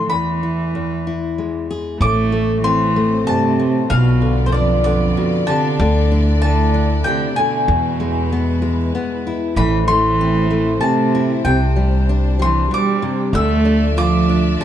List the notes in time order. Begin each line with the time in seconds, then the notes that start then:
Already playing: D3
0.08 E2 E3 B5
0.43 E4
0.75 E2
1.07 E4
1.38 G#3
1.71 G#4
2.00 A1 A2 A3 C4 C5 D6
2.32 A3
2.62 E3 C4 C6
2.96 A3
3.26 G2 C3 A5
3.59 A2
3.89 B1 B2 B3 F4 D5 F5
4.22 D3
4.46 E2 C5
4.52 F2 D4 D5
4.84 F2 D3 D5
5.17 B2
5.47 C3 D3 A5
5.79 D2 D3 A3 E4
6.12 D4
6.41 D3 E4 A5
6.74 D4
7.04 C3 D3 G5
7.36 B2 D3 G#5
7.67 E2 G#3 B4
8.00 G#3
8.32 B3
8.62 G#3
8.95 B3
9.27 E4
9.56 A1 A2 E3 A3 E4 C5 B5
9.88 E3 A3 C6
10.21 C4
10.51 A3
10.81 C3 C4 A5
11.15 E4
11.45 C2 C3 G3 D4 G5
11.76 G3
12.09 D4
12.39 E3 G3 C6
12.71 B2 G3 D6
13.02 C3
13.33 D2 D3 F3 A3 D5 E5 E6
13.65 D4
13.97 F3 F4 D6
14.29 D4
14.59 C3 D3 A5